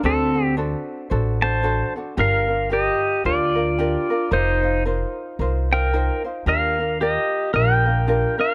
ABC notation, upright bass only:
X:1
M:4/4
L:1/8
Q:"Swing" 1/4=112
K:Dphr
V:1 name="Upright bass" clef=bass
D,,4 A,,,4 | G,,,4 D,,4 | F,,,4 C,,4 | E,,4 B,,,4 |]